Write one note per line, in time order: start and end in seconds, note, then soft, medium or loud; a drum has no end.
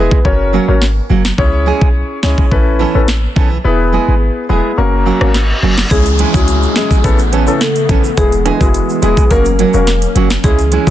0.00 0.17 G#3 medium
0.00 0.18 B3 medium
0.00 0.23 B3 medium
0.00 0.18 E4 medium
0.00 0.23 E4 medium
0.00 0.18 G#4 medium
0.00 0.23 G#4 medium
0.00 0.23 B4 medium
0.11 kick loud
0.25 0.59 F#1 loud
0.25 0.65 C#4 medium
0.25 0.65 F#4 medium
0.25 0.65 A#4 medium
0.25 0.65 C#5 loud
0.25 kick medium
0.53 0.74 F#3 medium
0.53 0.74 A#3 medium
0.53 0.74 C#4 loud
0.53 0.75 F#4 medium
0.68 1.01 G#1 medium
0.68 0.80 C#4 medium
0.68 0.80 F#4 medium
0.68 0.80 A#4 medium
0.68 0.80 C#5 medium
0.82 snare medium
1.09 1.32 F#1 medium
1.09 1.30 F#3 medium
1.09 1.24 A#3 medium
1.09 1.24 C#4 medium
1.09 1.23 F#4 medium
1.25 finger snap medium
1.25 muted nylon-string guitar stroke soft
1.25 snare loud
1.38 1.72 C#2 loud
1.38 2.17 C#4 medium
1.38 2.17 E4 medium
1.38 2.17 G#4 medium
1.38 2.17 C#5 loud
1.38 kick loud
1.66 1.87 G#3 medium
1.66 1.87 C#4 medium
1.66 1.88 E4 medium
1.66 1.88 G#4 loud
1.81 2.04 B1 medium
1.81 kick loud
2.23 2.35 C#2 loud
2.23 2.44 G#3 medium
2.23 2.49 C#4 medium
2.23 2.44 C#4 medium
2.23 2.49 E4 medium
2.23 2.44 E4 medium
2.23 2.49 G#4 medium
2.23 2.44 G#4 loud
2.23 2.50 C#5 medium
2.23 finger snap medium
2.23 snare loud
2.38 kick loud
2.51 2.85 A1 loud
2.51 2.91 C#4 medium
2.51 2.91 E4 medium
2.51 2.91 A4 medium
2.51 2.91 B4 loud
2.51 kick medium
2.79 3.00 E3 medium
2.79 3.01 B3 medium
2.79 3.01 C#4 loud
2.79 3.01 A4 loud
2.95 3.27 A1 medium
2.95 3.06 C#4 medium
2.95 3.06 E4 medium
2.95 3.06 A4 medium
2.95 3.07 B4 medium
3.08 finger snap medium
3.08 snare loud
3.36 3.58 B1 medium
3.36 3.57 E3 medium
3.36 3.51 B3 medium
3.36 3.50 C#4 medium
3.36 3.50 A4 medium
3.36 kick loud
3.51 muted nylon-string guitar stroke soft
3.64 3.98 E1 loud
3.64 4.43 B3 loud
3.64 4.43 E4 medium
3.64 4.43 G#4 medium
3.64 4.43 B4 loud
3.92 4.13 G#3 medium
3.92 4.14 B3 medium
3.92 4.14 E4 medium
3.92 4.14 G#4 medium
4.08 4.30 G#1 medium
4.49 4.61 E1 medium
4.49 4.70 G#3 medium
4.49 4.76 B3 medium
4.49 4.70 B3 medium
4.49 4.76 E4 medium
4.49 4.71 E4 medium
4.49 4.76 G#4 medium
4.49 4.71 G#4 medium
4.49 4.76 B4 medium
4.78 5.12 F#1 loud
4.78 5.17 A#3 medium
4.78 5.18 C#4 medium
4.78 5.18 F#4 medium
4.78 5.18 A#4 loud
4.78 reverse cymbal medium
5.06 5.27 F#3 medium
5.06 5.27 A#3 medium
5.06 5.27 C#4 medium
5.06 5.27 F#4 loud
5.21 5.53 G#1 medium
5.21 5.33 A#3 medium
5.21 5.33 C#4 medium
5.21 5.33 F#4 medium
5.21 5.33 A#4 medium
5.21 cross-stick loud
5.34 snare medium
5.62 5.85 F#1 medium
5.62 5.83 F#3 medium
5.62 5.77 A#3 medium
5.62 5.77 C#4 medium
5.62 5.76 F#4 medium
5.77 finger snap medium
5.77 muted nylon-string guitar stroke soft
5.77 snare loud
5.91 6.25 C#2 loud
5.91 7.03 E3 medium
5.91 6.04 G#3 medium
5.91 7.03 G#3 medium
5.91 6.04 C#4 medium
5.91 7.03 C#4 medium
5.91 6.04 E4 medium
5.91 6.01 G#4 loud
5.91 6.04 G#4 loud
5.91 kick loud
5.91 closed hi-hat medium
5.91 downlifter medium
5.91 shaker medium
6.06 closed hi-hat soft
6.06 shaker medium
6.19 6.40 G#3 medium
6.19 6.40 C#4 medium
6.19 6.40 E4 loud
6.19 6.41 G#4 medium
6.19 closed hi-hat medium
6.34 6.67 C#2 medium
6.34 6.73 G#3 medium
6.34 6.73 C#4 medium
6.34 6.73 E4 medium
6.34 6.53 F#4 medium
6.34 6.73 G#4 medium
6.34 kick loud
6.34 shaker medium
6.48 closed hi-hat medium
6.48 shaker medium
6.63 shaker medium
6.76 6.97 G#3 medium
6.76 7.02 G#3 medium
6.76 7.02 C#4 medium
6.76 6.97 C#4 medium
6.76 7.02 E4 medium
6.76 6.97 E4 medium
6.76 6.95 G#4 medium
6.76 7.02 G#4 medium
6.76 6.97 G#4 medium
6.76 finger snap loud
6.76 snare loud
6.76 closed hi-hat medium
6.76 shaker medium
6.91 kick loud
6.91 shaker medium
7.04 7.48 A1 loud
7.04 8.16 C#3 medium
7.04 8.16 A3 medium
7.04 7.17 B3 loud
7.04 9.29 B3 medium
7.04 7.17 C#4 medium
7.04 7.17 E4 medium
7.04 7.18 A4 loud
7.04 kick medium
7.04 closed hi-hat medium
7.04 shaker medium
7.19 closed hi-hat medium
7.19 shaker medium
7.32 7.53 E3 medium
7.32 7.53 B3 medium
7.32 7.54 C#4 medium
7.32 7.54 A4 medium
7.32 closed hi-hat medium
7.47 7.59 B3 medium
7.47 7.59 C#4 medium
7.47 7.59 E4 medium
7.47 7.59 A4 medium
7.47 shaker medium
7.61 8.02 A4 medium
7.61 finger snap medium
7.61 snare loud
7.61 closed hi-hat medium
7.61 shaker medium
7.76 closed hi-hat medium
7.76 shaker medium
7.89 8.01 A1 loud
7.89 8.10 E3 medium
7.89 8.04 B3 medium
7.89 8.03 C#4 medium
7.89 8.03 A4 medium
7.89 kick loud
7.89 closed hi-hat medium
8.04 muted nylon-string guitar stroke medium
8.04 shaker medium
8.17 8.51 E1 loud
8.17 9.30 E3 medium
8.17 8.30 G#3 loud
8.17 9.30 G#3 medium
8.17 8.31 B3 medium
8.17 8.31 E4 medium
8.17 8.27 G#4 loud
8.17 8.31 G#4 loud
8.17 kick loud
8.17 closed hi-hat medium
8.17 shaker medium
8.32 closed hi-hat soft
8.32 shaker medium
8.45 8.66 G#3 medium
8.45 8.67 B3 medium
8.45 8.67 E4 medium
8.45 8.67 G#4 medium
8.45 closed hi-hat medium
8.45 high timbale medium
8.61 8.83 F#1 medium
8.61 8.99 G#3 medium
8.61 8.99 B3 medium
8.61 8.99 E4 medium
8.61 8.79 F#4 medium
8.61 8.99 G#4 medium
8.61 kick loud
8.61 shaker medium
8.74 closed hi-hat medium
8.74 shaker medium
8.89 shaker medium
9.02 9.14 E1 loud
9.02 9.23 G#3 medium
9.02 9.28 G#3 medium
9.02 9.29 B3 medium
9.02 9.23 B3 medium
9.02 9.29 E4 medium
9.02 9.24 E4 medium
9.02 9.21 G#4 medium
9.02 9.29 G#4 medium
9.02 9.24 G#4 loud
9.02 closed hi-hat medium
9.02 shaker medium
9.17 kick loud
9.17 shaker medium
9.30 9.64 F#1 loud
9.30 10.43 F#3 medium
9.30 9.44 A#3 medium
9.30 10.43 A#3 medium
9.30 9.44 C#4 medium
9.30 10.90 C#4 medium
9.30 9.44 F#4 medium
9.30 9.41 A#4 medium
9.30 9.44 A#4 loud
9.30 kick medium
9.30 closed hi-hat medium
9.30 shaker medium
9.45 closed hi-hat medium
9.45 shaker medium
9.59 9.80 F#3 medium
9.59 9.80 A#3 medium
9.59 9.80 C#4 medium
9.59 9.80 F#4 loud
9.59 9.69 A#4 medium
9.59 closed hi-hat medium
9.74 10.06 E1 medium
9.74 9.86 A#3 medium
9.74 9.86 C#4 medium
9.74 9.86 F#4 medium
9.74 9.86 A#4 medium
9.74 shaker medium
9.87 snare medium
9.87 closed hi-hat medium
9.87 shaker medium
10.02 closed hi-hat medium
10.02 shaker medium
10.15 10.38 F#1 medium
10.15 10.36 F#3 medium
10.15 10.30 A#3 medium
10.15 10.30 C#4 medium
10.15 10.29 F#4 medium
10.15 closed hi-hat medium
10.30 finger snap loud
10.30 muted nylon-string guitar stroke soft
10.30 snare loud
10.30 shaker medium
10.44 10.78 C#2 loud
10.44 10.90 E3 medium
10.44 10.57 G#3 medium
10.44 10.90 G#3 medium
10.44 10.57 C#4 medium
10.44 10.57 E4 medium
10.44 10.54 G#4 medium
10.44 10.57 G#4 loud
10.44 kick loud
10.44 closed hi-hat medium
10.44 shaker medium
10.59 closed hi-hat soft
10.59 shaker medium
10.72 10.90 G#3 medium
10.72 10.90 C#4 medium
10.72 10.90 E4 medium
10.72 10.90 G#4 medium
10.72 closed hi-hat medium
10.87 10.90 C#2 medium
10.87 10.90 G#3 medium
10.87 10.90 C#4 medium
10.87 10.90 F#4 medium
10.87 kick loud